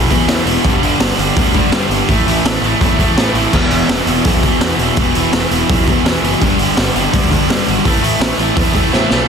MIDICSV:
0, 0, Header, 1, 5, 480
1, 0, Start_track
1, 0, Tempo, 360144
1, 858, Time_signature, 4, 2, 24, 8
1, 12368, End_track
2, 0, Start_track
2, 0, Title_t, "Distorted electric guitar"
2, 0, Program_c, 0, 30
2, 0, Note_on_c, 0, 52, 92
2, 134, Note_on_c, 0, 40, 96
2, 136, Note_off_c, 0, 52, 0
2, 145, Note_on_c, 0, 47, 98
2, 152, Note_on_c, 0, 52, 104
2, 365, Note_off_c, 0, 40, 0
2, 375, Note_off_c, 0, 47, 0
2, 381, Note_on_c, 0, 40, 85
2, 384, Note_off_c, 0, 52, 0
2, 391, Note_on_c, 0, 47, 90
2, 400, Note_on_c, 0, 52, 94
2, 600, Note_off_c, 0, 40, 0
2, 606, Note_off_c, 0, 47, 0
2, 613, Note_off_c, 0, 52, 0
2, 616, Note_on_c, 0, 40, 86
2, 622, Note_on_c, 0, 47, 88
2, 629, Note_on_c, 0, 52, 107
2, 843, Note_off_c, 0, 40, 0
2, 846, Note_off_c, 0, 47, 0
2, 849, Note_on_c, 0, 43, 94
2, 850, Note_off_c, 0, 52, 0
2, 851, Note_on_c, 0, 50, 98
2, 860, Note_on_c, 0, 55, 93
2, 1075, Note_off_c, 0, 43, 0
2, 1083, Note_off_c, 0, 50, 0
2, 1086, Note_off_c, 0, 55, 0
2, 1091, Note_on_c, 0, 43, 72
2, 1099, Note_on_c, 0, 50, 85
2, 1102, Note_on_c, 0, 55, 92
2, 1303, Note_off_c, 0, 43, 0
2, 1316, Note_off_c, 0, 50, 0
2, 1319, Note_on_c, 0, 43, 91
2, 1320, Note_off_c, 0, 55, 0
2, 1332, Note_on_c, 0, 50, 97
2, 1336, Note_on_c, 0, 55, 98
2, 1545, Note_off_c, 0, 43, 0
2, 1552, Note_off_c, 0, 50, 0
2, 1561, Note_on_c, 0, 43, 95
2, 1562, Note_off_c, 0, 55, 0
2, 1568, Note_on_c, 0, 50, 103
2, 1578, Note_on_c, 0, 55, 109
2, 1789, Note_off_c, 0, 43, 0
2, 1801, Note_off_c, 0, 50, 0
2, 1804, Note_off_c, 0, 55, 0
2, 1805, Note_on_c, 0, 43, 81
2, 1817, Note_on_c, 0, 50, 85
2, 1820, Note_on_c, 0, 55, 95
2, 2028, Note_off_c, 0, 43, 0
2, 2035, Note_off_c, 0, 50, 0
2, 2042, Note_off_c, 0, 55, 0
2, 2044, Note_on_c, 0, 43, 86
2, 2051, Note_on_c, 0, 50, 86
2, 2058, Note_on_c, 0, 55, 94
2, 2279, Note_off_c, 0, 43, 0
2, 2286, Note_off_c, 0, 50, 0
2, 2290, Note_off_c, 0, 55, 0
2, 2295, Note_on_c, 0, 43, 98
2, 2302, Note_on_c, 0, 50, 96
2, 2306, Note_on_c, 0, 55, 92
2, 2510, Note_off_c, 0, 43, 0
2, 2519, Note_off_c, 0, 55, 0
2, 2520, Note_off_c, 0, 50, 0
2, 2526, Note_on_c, 0, 43, 94
2, 2535, Note_on_c, 0, 55, 97
2, 2536, Note_on_c, 0, 50, 93
2, 2759, Note_off_c, 0, 50, 0
2, 2760, Note_off_c, 0, 43, 0
2, 2764, Note_off_c, 0, 55, 0
2, 2765, Note_on_c, 0, 45, 97
2, 2776, Note_on_c, 0, 52, 88
2, 2777, Note_on_c, 0, 57, 101
2, 3001, Note_off_c, 0, 45, 0
2, 3017, Note_off_c, 0, 57, 0
2, 3017, Note_on_c, 0, 45, 85
2, 3022, Note_off_c, 0, 52, 0
2, 3027, Note_on_c, 0, 52, 87
2, 3033, Note_on_c, 0, 57, 84
2, 3252, Note_off_c, 0, 45, 0
2, 3261, Note_off_c, 0, 57, 0
2, 3268, Note_on_c, 0, 45, 75
2, 3270, Note_off_c, 0, 52, 0
2, 3275, Note_on_c, 0, 52, 99
2, 3277, Note_on_c, 0, 57, 107
2, 3490, Note_off_c, 0, 45, 0
2, 3496, Note_off_c, 0, 57, 0
2, 3506, Note_on_c, 0, 45, 98
2, 3509, Note_off_c, 0, 52, 0
2, 3512, Note_on_c, 0, 57, 107
2, 3514, Note_on_c, 0, 52, 109
2, 3727, Note_off_c, 0, 45, 0
2, 3738, Note_off_c, 0, 57, 0
2, 3743, Note_on_c, 0, 45, 91
2, 3746, Note_off_c, 0, 52, 0
2, 3751, Note_on_c, 0, 52, 81
2, 3754, Note_on_c, 0, 57, 88
2, 3964, Note_off_c, 0, 45, 0
2, 3979, Note_off_c, 0, 52, 0
2, 3980, Note_on_c, 0, 45, 86
2, 3981, Note_off_c, 0, 57, 0
2, 3984, Note_on_c, 0, 52, 87
2, 3997, Note_on_c, 0, 57, 91
2, 4212, Note_off_c, 0, 45, 0
2, 4228, Note_off_c, 0, 57, 0
2, 4228, Note_on_c, 0, 45, 81
2, 4232, Note_off_c, 0, 52, 0
2, 4237, Note_on_c, 0, 52, 99
2, 4244, Note_on_c, 0, 57, 97
2, 4458, Note_off_c, 0, 45, 0
2, 4470, Note_off_c, 0, 57, 0
2, 4474, Note_on_c, 0, 45, 82
2, 4478, Note_off_c, 0, 52, 0
2, 4483, Note_on_c, 0, 52, 97
2, 4486, Note_on_c, 0, 57, 108
2, 4695, Note_off_c, 0, 45, 0
2, 4701, Note_off_c, 0, 57, 0
2, 4709, Note_on_c, 0, 40, 88
2, 4714, Note_off_c, 0, 52, 0
2, 4714, Note_on_c, 0, 47, 100
2, 4719, Note_on_c, 0, 52, 86
2, 4934, Note_off_c, 0, 47, 0
2, 4940, Note_off_c, 0, 40, 0
2, 4946, Note_on_c, 0, 40, 80
2, 4950, Note_on_c, 0, 47, 76
2, 4952, Note_off_c, 0, 52, 0
2, 4957, Note_on_c, 0, 52, 79
2, 5171, Note_off_c, 0, 40, 0
2, 5173, Note_off_c, 0, 47, 0
2, 5176, Note_on_c, 0, 40, 84
2, 5189, Note_on_c, 0, 47, 92
2, 5191, Note_off_c, 0, 52, 0
2, 5196, Note_on_c, 0, 52, 90
2, 5416, Note_off_c, 0, 47, 0
2, 5421, Note_off_c, 0, 40, 0
2, 5427, Note_on_c, 0, 40, 92
2, 5432, Note_on_c, 0, 47, 100
2, 5440, Note_off_c, 0, 52, 0
2, 5445, Note_on_c, 0, 52, 107
2, 5655, Note_off_c, 0, 40, 0
2, 5665, Note_off_c, 0, 47, 0
2, 5671, Note_on_c, 0, 40, 76
2, 5673, Note_off_c, 0, 52, 0
2, 5681, Note_on_c, 0, 47, 82
2, 5689, Note_on_c, 0, 52, 89
2, 5891, Note_off_c, 0, 40, 0
2, 5897, Note_off_c, 0, 47, 0
2, 5906, Note_off_c, 0, 52, 0
2, 5907, Note_on_c, 0, 40, 86
2, 5913, Note_on_c, 0, 47, 91
2, 5922, Note_on_c, 0, 52, 98
2, 6121, Note_off_c, 0, 40, 0
2, 6127, Note_off_c, 0, 47, 0
2, 6137, Note_off_c, 0, 52, 0
2, 6137, Note_on_c, 0, 40, 84
2, 6143, Note_on_c, 0, 47, 90
2, 6153, Note_on_c, 0, 52, 107
2, 6366, Note_off_c, 0, 40, 0
2, 6379, Note_off_c, 0, 47, 0
2, 6381, Note_off_c, 0, 52, 0
2, 6382, Note_on_c, 0, 40, 88
2, 6395, Note_on_c, 0, 47, 93
2, 6397, Note_on_c, 0, 52, 101
2, 6616, Note_off_c, 0, 40, 0
2, 6621, Note_off_c, 0, 47, 0
2, 6626, Note_off_c, 0, 52, 0
2, 6632, Note_on_c, 0, 40, 85
2, 6637, Note_on_c, 0, 47, 93
2, 6642, Note_on_c, 0, 52, 108
2, 6847, Note_off_c, 0, 40, 0
2, 6860, Note_off_c, 0, 47, 0
2, 6863, Note_on_c, 0, 40, 81
2, 6864, Note_off_c, 0, 52, 0
2, 6876, Note_on_c, 0, 47, 88
2, 6880, Note_on_c, 0, 52, 84
2, 7081, Note_off_c, 0, 40, 0
2, 7090, Note_off_c, 0, 47, 0
2, 7097, Note_on_c, 0, 40, 79
2, 7098, Note_off_c, 0, 52, 0
2, 7106, Note_on_c, 0, 47, 98
2, 7114, Note_on_c, 0, 52, 99
2, 7311, Note_off_c, 0, 40, 0
2, 7320, Note_off_c, 0, 47, 0
2, 7327, Note_on_c, 0, 40, 93
2, 7328, Note_off_c, 0, 52, 0
2, 7336, Note_on_c, 0, 47, 104
2, 7344, Note_on_c, 0, 52, 97
2, 7566, Note_off_c, 0, 40, 0
2, 7575, Note_off_c, 0, 47, 0
2, 7582, Note_on_c, 0, 40, 87
2, 7585, Note_off_c, 0, 52, 0
2, 7591, Note_on_c, 0, 47, 82
2, 7601, Note_on_c, 0, 52, 86
2, 7801, Note_off_c, 0, 40, 0
2, 7806, Note_off_c, 0, 47, 0
2, 7812, Note_off_c, 0, 52, 0
2, 7817, Note_on_c, 0, 40, 94
2, 7822, Note_on_c, 0, 47, 93
2, 7828, Note_on_c, 0, 52, 92
2, 8041, Note_off_c, 0, 40, 0
2, 8047, Note_off_c, 0, 47, 0
2, 8051, Note_off_c, 0, 52, 0
2, 8057, Note_on_c, 0, 40, 85
2, 8063, Note_on_c, 0, 47, 100
2, 8067, Note_on_c, 0, 52, 96
2, 8277, Note_off_c, 0, 40, 0
2, 8290, Note_off_c, 0, 47, 0
2, 8293, Note_on_c, 0, 40, 86
2, 8295, Note_off_c, 0, 52, 0
2, 8306, Note_on_c, 0, 47, 95
2, 8311, Note_on_c, 0, 52, 89
2, 8524, Note_off_c, 0, 40, 0
2, 8531, Note_off_c, 0, 47, 0
2, 8533, Note_off_c, 0, 52, 0
2, 8538, Note_on_c, 0, 43, 89
2, 8548, Note_on_c, 0, 50, 91
2, 8559, Note_on_c, 0, 55, 97
2, 8768, Note_off_c, 0, 43, 0
2, 8777, Note_off_c, 0, 50, 0
2, 8784, Note_on_c, 0, 43, 73
2, 8785, Note_off_c, 0, 55, 0
2, 8793, Note_on_c, 0, 50, 97
2, 8801, Note_on_c, 0, 55, 75
2, 9001, Note_off_c, 0, 43, 0
2, 9012, Note_off_c, 0, 50, 0
2, 9017, Note_on_c, 0, 43, 80
2, 9018, Note_off_c, 0, 55, 0
2, 9028, Note_on_c, 0, 50, 89
2, 9034, Note_on_c, 0, 55, 90
2, 9240, Note_off_c, 0, 43, 0
2, 9253, Note_off_c, 0, 50, 0
2, 9256, Note_on_c, 0, 43, 100
2, 9258, Note_off_c, 0, 55, 0
2, 9269, Note_on_c, 0, 50, 110
2, 9274, Note_on_c, 0, 55, 116
2, 9473, Note_off_c, 0, 43, 0
2, 9485, Note_off_c, 0, 50, 0
2, 9489, Note_on_c, 0, 43, 87
2, 9494, Note_off_c, 0, 55, 0
2, 9501, Note_on_c, 0, 50, 86
2, 9510, Note_on_c, 0, 55, 92
2, 9714, Note_off_c, 0, 43, 0
2, 9719, Note_off_c, 0, 50, 0
2, 9726, Note_off_c, 0, 55, 0
2, 9730, Note_on_c, 0, 43, 82
2, 9735, Note_on_c, 0, 50, 95
2, 9742, Note_on_c, 0, 55, 107
2, 9957, Note_off_c, 0, 43, 0
2, 9968, Note_off_c, 0, 50, 0
2, 9973, Note_on_c, 0, 43, 101
2, 9978, Note_off_c, 0, 55, 0
2, 9984, Note_on_c, 0, 50, 92
2, 9994, Note_on_c, 0, 55, 92
2, 10193, Note_off_c, 0, 43, 0
2, 10196, Note_off_c, 0, 50, 0
2, 10207, Note_off_c, 0, 55, 0
2, 10209, Note_on_c, 0, 43, 81
2, 10212, Note_on_c, 0, 50, 90
2, 10223, Note_on_c, 0, 55, 108
2, 10440, Note_off_c, 0, 43, 0
2, 10442, Note_off_c, 0, 50, 0
2, 10447, Note_off_c, 0, 55, 0
2, 10452, Note_on_c, 0, 45, 87
2, 10457, Note_on_c, 0, 52, 101
2, 10462, Note_on_c, 0, 57, 106
2, 10670, Note_off_c, 0, 45, 0
2, 10683, Note_off_c, 0, 52, 0
2, 10686, Note_off_c, 0, 57, 0
2, 10686, Note_on_c, 0, 45, 74
2, 10699, Note_on_c, 0, 52, 92
2, 10702, Note_on_c, 0, 57, 94
2, 10905, Note_off_c, 0, 45, 0
2, 10914, Note_off_c, 0, 52, 0
2, 10920, Note_off_c, 0, 57, 0
2, 10921, Note_on_c, 0, 45, 80
2, 10930, Note_on_c, 0, 52, 97
2, 10936, Note_on_c, 0, 57, 96
2, 11149, Note_off_c, 0, 45, 0
2, 11161, Note_off_c, 0, 52, 0
2, 11164, Note_off_c, 0, 57, 0
2, 11165, Note_on_c, 0, 45, 83
2, 11177, Note_on_c, 0, 52, 90
2, 11180, Note_on_c, 0, 57, 104
2, 11377, Note_off_c, 0, 45, 0
2, 11384, Note_off_c, 0, 52, 0
2, 11390, Note_off_c, 0, 57, 0
2, 11393, Note_on_c, 0, 45, 75
2, 11400, Note_on_c, 0, 52, 86
2, 11406, Note_on_c, 0, 57, 87
2, 11629, Note_off_c, 0, 45, 0
2, 11636, Note_off_c, 0, 52, 0
2, 11645, Note_on_c, 0, 45, 83
2, 11650, Note_off_c, 0, 57, 0
2, 11652, Note_on_c, 0, 52, 80
2, 11666, Note_on_c, 0, 57, 97
2, 11872, Note_off_c, 0, 45, 0
2, 11877, Note_off_c, 0, 52, 0
2, 11885, Note_off_c, 0, 57, 0
2, 11888, Note_on_c, 0, 45, 88
2, 11893, Note_on_c, 0, 52, 96
2, 11901, Note_on_c, 0, 57, 103
2, 12103, Note_off_c, 0, 45, 0
2, 12108, Note_off_c, 0, 52, 0
2, 12116, Note_off_c, 0, 57, 0
2, 12119, Note_on_c, 0, 45, 88
2, 12124, Note_on_c, 0, 52, 100
2, 12132, Note_on_c, 0, 57, 96
2, 12353, Note_off_c, 0, 45, 0
2, 12355, Note_off_c, 0, 52, 0
2, 12359, Note_off_c, 0, 57, 0
2, 12368, End_track
3, 0, Start_track
3, 0, Title_t, "Distorted electric guitar"
3, 0, Program_c, 1, 30
3, 0, Note_on_c, 1, 47, 103
3, 136, Note_off_c, 1, 47, 0
3, 12368, End_track
4, 0, Start_track
4, 0, Title_t, "Picked electric bass"
4, 0, Program_c, 2, 34
4, 0, Note_on_c, 2, 35, 86
4, 197, Note_off_c, 2, 35, 0
4, 365, Note_on_c, 2, 40, 84
4, 520, Note_off_c, 2, 40, 0
4, 605, Note_on_c, 2, 28, 93
4, 760, Note_off_c, 2, 28, 0
4, 861, Note_on_c, 2, 31, 92
4, 1011, Note_off_c, 2, 31, 0
4, 1089, Note_on_c, 2, 31, 86
4, 1242, Note_off_c, 2, 31, 0
4, 1330, Note_on_c, 2, 31, 92
4, 1483, Note_off_c, 2, 31, 0
4, 1572, Note_on_c, 2, 31, 91
4, 1725, Note_off_c, 2, 31, 0
4, 1815, Note_on_c, 2, 38, 92
4, 2118, Note_off_c, 2, 38, 0
4, 2290, Note_on_c, 2, 43, 92
4, 2444, Note_off_c, 2, 43, 0
4, 2520, Note_on_c, 2, 31, 94
4, 2677, Note_off_c, 2, 31, 0
4, 2782, Note_on_c, 2, 33, 89
4, 2933, Note_off_c, 2, 33, 0
4, 3016, Note_on_c, 2, 33, 87
4, 3168, Note_off_c, 2, 33, 0
4, 3258, Note_on_c, 2, 33, 88
4, 3409, Note_off_c, 2, 33, 0
4, 3486, Note_on_c, 2, 33, 92
4, 3641, Note_off_c, 2, 33, 0
4, 3741, Note_on_c, 2, 40, 93
4, 4042, Note_off_c, 2, 40, 0
4, 4214, Note_on_c, 2, 45, 90
4, 4367, Note_off_c, 2, 45, 0
4, 4444, Note_on_c, 2, 33, 91
4, 4600, Note_off_c, 2, 33, 0
4, 4709, Note_on_c, 2, 28, 89
4, 4858, Note_off_c, 2, 28, 0
4, 4931, Note_on_c, 2, 28, 85
4, 5086, Note_off_c, 2, 28, 0
4, 5175, Note_on_c, 2, 28, 89
4, 5328, Note_off_c, 2, 28, 0
4, 5414, Note_on_c, 2, 28, 103
4, 5567, Note_off_c, 2, 28, 0
4, 5665, Note_on_c, 2, 35, 97
4, 5965, Note_off_c, 2, 35, 0
4, 6137, Note_on_c, 2, 40, 86
4, 6290, Note_off_c, 2, 40, 0
4, 6370, Note_on_c, 2, 28, 81
4, 6525, Note_off_c, 2, 28, 0
4, 6622, Note_on_c, 2, 28, 94
4, 6773, Note_off_c, 2, 28, 0
4, 6863, Note_on_c, 2, 28, 84
4, 7014, Note_off_c, 2, 28, 0
4, 7096, Note_on_c, 2, 28, 90
4, 7249, Note_off_c, 2, 28, 0
4, 7342, Note_on_c, 2, 28, 91
4, 7493, Note_off_c, 2, 28, 0
4, 7588, Note_on_c, 2, 35, 87
4, 7887, Note_off_c, 2, 35, 0
4, 8061, Note_on_c, 2, 40, 84
4, 8212, Note_off_c, 2, 40, 0
4, 8292, Note_on_c, 2, 30, 81
4, 8446, Note_off_c, 2, 30, 0
4, 8551, Note_on_c, 2, 31, 97
4, 8699, Note_off_c, 2, 31, 0
4, 8790, Note_on_c, 2, 31, 82
4, 8938, Note_off_c, 2, 31, 0
4, 9029, Note_on_c, 2, 31, 91
4, 9177, Note_off_c, 2, 31, 0
4, 9266, Note_on_c, 2, 31, 94
4, 9415, Note_off_c, 2, 31, 0
4, 9510, Note_on_c, 2, 38, 92
4, 9807, Note_off_c, 2, 38, 0
4, 9995, Note_on_c, 2, 43, 86
4, 10141, Note_off_c, 2, 43, 0
4, 10229, Note_on_c, 2, 32, 96
4, 10377, Note_off_c, 2, 32, 0
4, 10464, Note_on_c, 2, 33, 89
4, 10613, Note_off_c, 2, 33, 0
4, 10696, Note_on_c, 2, 33, 82
4, 10847, Note_off_c, 2, 33, 0
4, 10928, Note_on_c, 2, 33, 87
4, 11081, Note_off_c, 2, 33, 0
4, 11169, Note_on_c, 2, 33, 86
4, 11322, Note_off_c, 2, 33, 0
4, 11416, Note_on_c, 2, 40, 81
4, 11716, Note_off_c, 2, 40, 0
4, 11901, Note_on_c, 2, 45, 90
4, 12050, Note_off_c, 2, 45, 0
4, 12143, Note_on_c, 2, 35, 92
4, 12291, Note_off_c, 2, 35, 0
4, 12368, End_track
5, 0, Start_track
5, 0, Title_t, "Drums"
5, 138, Note_on_c, 9, 46, 63
5, 141, Note_on_c, 9, 36, 78
5, 271, Note_off_c, 9, 46, 0
5, 274, Note_off_c, 9, 36, 0
5, 379, Note_on_c, 9, 38, 112
5, 379, Note_on_c, 9, 46, 79
5, 512, Note_off_c, 9, 38, 0
5, 512, Note_off_c, 9, 46, 0
5, 621, Note_on_c, 9, 46, 65
5, 754, Note_off_c, 9, 46, 0
5, 860, Note_on_c, 9, 36, 115
5, 862, Note_on_c, 9, 46, 73
5, 994, Note_off_c, 9, 36, 0
5, 996, Note_off_c, 9, 46, 0
5, 1104, Note_on_c, 9, 46, 62
5, 1238, Note_off_c, 9, 46, 0
5, 1336, Note_on_c, 9, 38, 124
5, 1336, Note_on_c, 9, 46, 90
5, 1470, Note_off_c, 9, 38, 0
5, 1470, Note_off_c, 9, 46, 0
5, 1585, Note_on_c, 9, 46, 70
5, 1718, Note_off_c, 9, 46, 0
5, 1822, Note_on_c, 9, 36, 122
5, 1822, Note_on_c, 9, 46, 88
5, 1955, Note_off_c, 9, 36, 0
5, 1955, Note_off_c, 9, 46, 0
5, 2054, Note_on_c, 9, 46, 59
5, 2060, Note_on_c, 9, 36, 89
5, 2187, Note_off_c, 9, 46, 0
5, 2193, Note_off_c, 9, 36, 0
5, 2295, Note_on_c, 9, 38, 114
5, 2295, Note_on_c, 9, 46, 78
5, 2428, Note_off_c, 9, 38, 0
5, 2428, Note_off_c, 9, 46, 0
5, 2544, Note_on_c, 9, 46, 62
5, 2678, Note_off_c, 9, 46, 0
5, 2779, Note_on_c, 9, 46, 70
5, 2782, Note_on_c, 9, 36, 106
5, 2912, Note_off_c, 9, 46, 0
5, 2916, Note_off_c, 9, 36, 0
5, 3035, Note_on_c, 9, 46, 62
5, 3168, Note_off_c, 9, 46, 0
5, 3273, Note_on_c, 9, 38, 126
5, 3273, Note_on_c, 9, 46, 83
5, 3406, Note_off_c, 9, 38, 0
5, 3406, Note_off_c, 9, 46, 0
5, 3515, Note_on_c, 9, 46, 60
5, 3648, Note_off_c, 9, 46, 0
5, 3748, Note_on_c, 9, 36, 124
5, 3755, Note_on_c, 9, 46, 82
5, 3881, Note_off_c, 9, 36, 0
5, 3889, Note_off_c, 9, 46, 0
5, 3986, Note_on_c, 9, 36, 84
5, 3991, Note_on_c, 9, 46, 61
5, 4119, Note_off_c, 9, 36, 0
5, 4124, Note_off_c, 9, 46, 0
5, 4231, Note_on_c, 9, 38, 111
5, 4231, Note_on_c, 9, 46, 76
5, 4364, Note_off_c, 9, 38, 0
5, 4364, Note_off_c, 9, 46, 0
5, 4464, Note_on_c, 9, 46, 55
5, 4597, Note_off_c, 9, 46, 0
5, 4706, Note_on_c, 9, 49, 91
5, 4707, Note_on_c, 9, 36, 100
5, 4839, Note_off_c, 9, 49, 0
5, 4841, Note_off_c, 9, 36, 0
5, 4939, Note_on_c, 9, 46, 59
5, 5072, Note_off_c, 9, 46, 0
5, 5189, Note_on_c, 9, 38, 127
5, 5189, Note_on_c, 9, 46, 89
5, 5322, Note_off_c, 9, 38, 0
5, 5322, Note_off_c, 9, 46, 0
5, 5424, Note_on_c, 9, 46, 66
5, 5557, Note_off_c, 9, 46, 0
5, 5657, Note_on_c, 9, 46, 88
5, 5667, Note_on_c, 9, 36, 125
5, 5791, Note_off_c, 9, 46, 0
5, 5800, Note_off_c, 9, 36, 0
5, 5904, Note_on_c, 9, 46, 60
5, 5908, Note_on_c, 9, 36, 87
5, 6037, Note_off_c, 9, 46, 0
5, 6042, Note_off_c, 9, 36, 0
5, 6144, Note_on_c, 9, 38, 111
5, 6144, Note_on_c, 9, 46, 80
5, 6277, Note_off_c, 9, 38, 0
5, 6277, Note_off_c, 9, 46, 0
5, 6386, Note_on_c, 9, 46, 61
5, 6519, Note_off_c, 9, 46, 0
5, 6618, Note_on_c, 9, 46, 69
5, 6627, Note_on_c, 9, 36, 98
5, 6751, Note_off_c, 9, 46, 0
5, 6760, Note_off_c, 9, 36, 0
5, 6865, Note_on_c, 9, 46, 62
5, 6998, Note_off_c, 9, 46, 0
5, 7102, Note_on_c, 9, 38, 109
5, 7102, Note_on_c, 9, 46, 79
5, 7235, Note_off_c, 9, 38, 0
5, 7235, Note_off_c, 9, 46, 0
5, 7346, Note_on_c, 9, 46, 61
5, 7480, Note_off_c, 9, 46, 0
5, 7586, Note_on_c, 9, 46, 77
5, 7591, Note_on_c, 9, 36, 127
5, 7719, Note_off_c, 9, 46, 0
5, 7724, Note_off_c, 9, 36, 0
5, 7827, Note_on_c, 9, 46, 57
5, 7832, Note_on_c, 9, 36, 92
5, 7961, Note_off_c, 9, 46, 0
5, 7965, Note_off_c, 9, 36, 0
5, 8075, Note_on_c, 9, 38, 116
5, 8075, Note_on_c, 9, 46, 73
5, 8208, Note_off_c, 9, 38, 0
5, 8208, Note_off_c, 9, 46, 0
5, 8321, Note_on_c, 9, 46, 61
5, 8454, Note_off_c, 9, 46, 0
5, 8550, Note_on_c, 9, 46, 72
5, 8551, Note_on_c, 9, 36, 101
5, 8683, Note_off_c, 9, 46, 0
5, 8684, Note_off_c, 9, 36, 0
5, 8784, Note_on_c, 9, 46, 63
5, 8917, Note_off_c, 9, 46, 0
5, 9027, Note_on_c, 9, 38, 115
5, 9027, Note_on_c, 9, 46, 89
5, 9160, Note_off_c, 9, 38, 0
5, 9160, Note_off_c, 9, 46, 0
5, 9271, Note_on_c, 9, 46, 57
5, 9405, Note_off_c, 9, 46, 0
5, 9510, Note_on_c, 9, 36, 120
5, 9510, Note_on_c, 9, 46, 84
5, 9643, Note_off_c, 9, 46, 0
5, 9644, Note_off_c, 9, 36, 0
5, 9749, Note_on_c, 9, 36, 86
5, 9755, Note_on_c, 9, 46, 64
5, 9882, Note_off_c, 9, 36, 0
5, 9888, Note_off_c, 9, 46, 0
5, 9998, Note_on_c, 9, 38, 117
5, 9998, Note_on_c, 9, 46, 79
5, 10131, Note_off_c, 9, 38, 0
5, 10131, Note_off_c, 9, 46, 0
5, 10238, Note_on_c, 9, 46, 59
5, 10371, Note_off_c, 9, 46, 0
5, 10467, Note_on_c, 9, 36, 101
5, 10470, Note_on_c, 9, 46, 76
5, 10601, Note_off_c, 9, 36, 0
5, 10604, Note_off_c, 9, 46, 0
5, 10715, Note_on_c, 9, 46, 65
5, 10848, Note_off_c, 9, 46, 0
5, 10946, Note_on_c, 9, 38, 127
5, 10946, Note_on_c, 9, 46, 87
5, 11080, Note_off_c, 9, 38, 0
5, 11080, Note_off_c, 9, 46, 0
5, 11184, Note_on_c, 9, 46, 52
5, 11318, Note_off_c, 9, 46, 0
5, 11418, Note_on_c, 9, 46, 84
5, 11419, Note_on_c, 9, 36, 124
5, 11551, Note_off_c, 9, 46, 0
5, 11552, Note_off_c, 9, 36, 0
5, 11657, Note_on_c, 9, 36, 82
5, 11657, Note_on_c, 9, 46, 58
5, 11790, Note_off_c, 9, 36, 0
5, 11790, Note_off_c, 9, 46, 0
5, 11899, Note_on_c, 9, 38, 54
5, 12032, Note_off_c, 9, 38, 0
5, 12132, Note_on_c, 9, 38, 100
5, 12265, Note_off_c, 9, 38, 0
5, 12368, End_track
0, 0, End_of_file